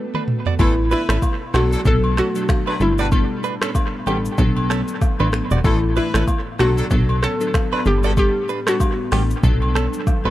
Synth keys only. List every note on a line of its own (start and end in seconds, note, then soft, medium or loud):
0.14 0.37 A3 medium
0.14 0.37 D4 medium
0.14 0.37 F#4 medium
0.14 0.37 B4 medium
0.59 1.18 A3 medium
0.59 1.18 B3 medium
0.59 1.18 E4 medium
0.59 1.18 B4 loud
1.54 1.79 F#3 medium
1.54 1.79 B3 medium
1.54 1.79 D4 medium
1.54 1.79 A4 medium
1.85 2.10 F#3 medium
1.85 2.11 B3 medium
1.85 2.11 D4 medium
1.85 2.11 A4 loud
2.35 2.77 F#3 medium
2.35 2.77 B3 medium
2.35 2.77 D4 medium
2.35 2.77 A4 medium
2.80 3.10 G3 medium
2.80 3.10 B3 medium
2.80 3.10 D4 medium
2.80 3.10 A4 medium
3.12 3.37 G3 medium
3.12 3.37 B3 medium
3.12 3.37 D4 medium
3.12 3.37 A4 loud
3.62 3.84 G3 medium
3.62 3.84 B3 medium
3.62 3.84 D4 medium
3.62 3.84 A4 medium
4.07 4.32 G3 medium
4.07 4.32 B3 medium
4.07 4.32 D4 medium
4.07 4.32 A4 medium
4.38 5.12 F#3 loud
4.38 5.12 B3 medium
4.38 5.12 D4 medium
4.38 5.12 A4 loud
5.19 5.42 F#3 medium
5.19 5.42 B3 medium
5.19 5.42 D4 medium
5.19 5.42 A4 medium
5.64 6.23 E3 medium
5.64 6.23 A3 medium
5.64 6.23 B3 medium
5.64 6.24 A4 loud
6.59 6.84 F#3 medium
6.59 6.84 B3 medium
6.59 6.84 D4 medium
6.59 6.84 A4 medium
6.90 7.16 F#3 loud
6.90 7.16 B3 medium
6.90 7.16 D4 medium
6.90 7.16 A4 loud
7.40 7.82 F#3 medium
7.40 7.82 B3 medium
7.40 7.82 D4 medium
7.40 7.82 A4 medium
7.85 8.15 G3 medium
7.85 8.15 B3 medium
7.85 8.15 D4 medium
7.85 8.15 A4 medium
8.17 8.42 G3 loud
8.17 8.42 B3 medium
8.17 8.42 D4 medium
8.17 8.42 A4 loud
8.67 8.89 G3 medium
8.67 8.89 B3 medium
8.67 8.90 D4 medium
8.67 8.90 A4 medium
9.11 9.37 G3 medium
9.11 9.37 B3 medium
9.11 9.37 D4 medium
9.11 9.37 A4 medium
9.43 10.17 F#3 medium
9.43 10.18 B3 medium
9.43 10.18 D4 medium
9.43 10.18 A4 loud
10.25 10.30 F#3 medium
10.25 10.30 B3 medium
10.25 10.30 D4 medium
10.25 10.30 A4 medium